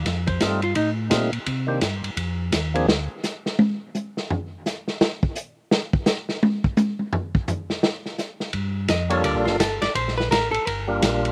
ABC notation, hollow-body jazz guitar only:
X:1
M:4/4
L:1/8
Q:"Swing" 1/4=170
K:Fmix
V:1 name="Hollow-body jazz guitar"
e c A F E z3 | z8 | z8 | z8 |
z8 | z8 | z2 e _d =d F A d | c =B _B A B4 |]